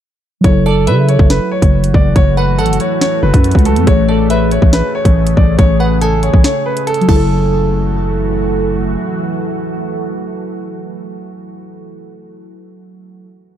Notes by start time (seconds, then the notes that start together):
0.41 F#1 E3 F#3 A3 E4 F#4 C#5, kick, closed hi-hat
0.48 A4
0.66 A4 D5
0.87 C#3 B4 E5, closed hi-hat
1.09 C#5, closed hi-hat
1.19 F#1, kick
1.30 B4, snare, closed hi-hat
1.51 C#5
1.62 F#1, kick, closed hi-hat
1.84 closed hi-hat
1.94 F#1 D5, kick
2.16 F#1 C#5, kick, closed hi-hat
2.37 B4 F#5
2.58 A1 A4 F#5, closed hi-hat
2.66 F#1, closed hi-hat
2.73 closed hi-hat
2.80 C#5, closed hi-hat
3.01 C#5, snare, closed hi-hat
3.23 F#1 B4
3.34 F#2, kick, closed hi-hat
3.44 closed hi-hat
3.51 C#2, kick, closed hi-hat
3.59 closed hi-hat
3.65 A4, closed hi-hat
3.76 F#2, closed hi-hat
3.83 A1 C#3 A3 G#4, kick, closed hi-hat
3.87 C#5
4.09 A4 D5
4.30 B4 E5, closed hi-hat
4.51 C#5, closed hi-hat
4.62 A1, kick
4.73 B4, snare, closed hi-hat
4.95 C#5
5.05 A1, kick, closed hi-hat
5.27 closed hi-hat
5.37 A1 D5, kick
5.58 A1 C#5, kick, closed hi-hat
5.80 B4 F#5
6.01 A4 G#5, closed hi-hat
6.23 C#5, closed hi-hat
6.34 A1, kick
6.44 C#5, snare, closed hi-hat
6.66 B4
6.77 closed hi-hat
6.87 A4, closed hi-hat
6.94 closed hi-hat
7.01 F#3, closed hi-hat
7.09 F#1 E3 A3 E4 F#4 A4 A5, kick, crash
7.16 A4